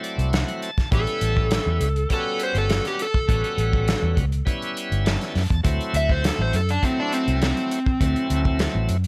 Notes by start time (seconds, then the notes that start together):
Already playing: F#3 A3 C4 E4
0.03 D5, closed hi-hat
0.18 C2, closed hi-hat
0.33 F#5, snare, closed hi-hat
0.48 closed hi-hat
0.62 A5, closed hi-hat
0.78 kick, snare, closed hi-hat
0.91 A1 G3 B3 C#4 E4 A4, kick, closed hi-hat
1.07 closed hi-hat
1.21 A1, closed hi-hat
1.37 kick
1.51 snare, closed hi-hat
1.66 E2
1.81 C#2, closed hi-hat
1.96 closed hi-hat
2.09 G3 B3 C#4 F#4, kick, closed hi-hat
2.13 A4
2.39 C5, closed hi-hat
2.55 G1 A4, closed hi-hat
2.70 snare, closed hi-hat
2.85 G4, snare, closed hi-hat
2.99 A4, closed hi-hat
3.14 kick
3.28 A1 G3 B3 C#4 F#4, kick, closed hi-hat
3.44 closed hi-hat
3.58 A1, closed hi-hat
3.73 kick
3.88 snare, closed hi-hat
4.03 E2
4.17 C#2, kick, closed hi-hat
4.32 closed hi-hat
4.45 G3 B3 C#4 E4, kick, closed hi-hat
4.62 closed hi-hat
4.77 closed hi-hat
4.92 G1, closed hi-hat
5.05 A5, snare, closed hi-hat
5.21 snare, closed hi-hat
5.35 F#2, snare, open hi-hat
5.50 E2, kick, closed hi-hat
5.63 D2 F#3 A3 C4 E4, kick, closed hi-hat
5.81 closed hi-hat
5.93 D2 E5, closed hi-hat
6.09 C5, kick
6.24 A4, snare, closed hi-hat
6.39 A1 C5
6.53 F#2 A4, closed hi-hat
6.69 D4, closed hi-hat
6.82 F#3 A3 C4 E4, kick, closed hi-hat
7.00 D4
7.13 C4, closed hi-hat
7.28 C2, closed hi-hat
7.42 C4, snare, closed hi-hat
7.57 closed hi-hat
7.71 closed hi-hat
7.86 kick
8.00 D2 F#3 A3 C4 E4, kick, closed hi-hat
8.16 closed hi-hat
8.30 D2, closed hi-hat
8.45 kick
8.59 snare, closed hi-hat
8.75 A1
8.89 F#2, closed hi-hat
9.04 closed hi-hat